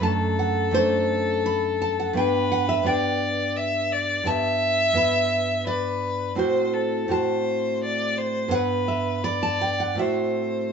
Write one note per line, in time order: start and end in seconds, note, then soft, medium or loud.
0.00 0.70 F#2 medium
0.00 0.71 A3 soft
0.00 0.72 D4 soft
0.00 2.16 A4 medium
0.00 0.38 A5 loud
0.39 0.73 F#5 medium
0.71 2.12 F#2 medium
0.71 2.12 A3 medium
0.71 2.13 D4 medium
0.71 1.43 C5 loud
1.46 1.80 B5 loud
1.82 1.99 A5 medium
2.00 2.17 F#5 medium
2.13 2.82 G2 medium
2.13 2.83 B3 medium
2.13 2.85 D4 medium
2.13 2.88 B4 medium
2.13 2.51 G5 medium
2.52 2.68 F#5 medium
2.69 2.86 E5 medium
2.83 4.21 G2 medium
2.83 4.22 B3 medium
2.83 4.23 D4 medium
2.83 3.58 D5 medium
2.83 3.88 G5 medium
3.56 3.94 E5 medium
3.92 4.29 D5 medium
4.24 4.92 G2 medium
4.24 4.93 B3 soft
4.24 4.94 A5 loud
4.28 5.67 E5 loud
4.93 6.31 G2 medium
4.93 6.32 B3 medium
4.93 5.64 B5 medium
5.67 6.36 B4 medium
5.67 6.34 D5 loud
6.35 7.07 A2 medium
6.35 7.08 C4 medium
6.35 7.09 F#4 medium
6.35 6.75 C5 medium
6.35 7.09 C5 medium
6.73 7.13 A4 medium
7.08 8.46 A2 medium
7.08 8.47 C4 medium
7.08 8.48 F#4 medium
7.08 7.82 C5 medium
7.08 8.13 A5 medium
7.84 8.19 D5 medium
8.18 8.55 C5 medium
8.48 9.93 G2 medium
8.48 9.94 B3 medium
8.48 8.86 F#5 medium
8.54 9.26 B4 medium
8.88 9.23 E5 medium
9.24 10.02 D5 medium
9.24 9.42 B5 loud
9.43 9.61 A5 medium
9.62 9.80 G5 medium
9.80 9.99 F#5 medium
9.95 10.72 A2 medium
9.95 10.72 C4 medium
9.95 10.72 F#4 soft
9.99 10.72 C5 medium
9.99 10.72 E5 medium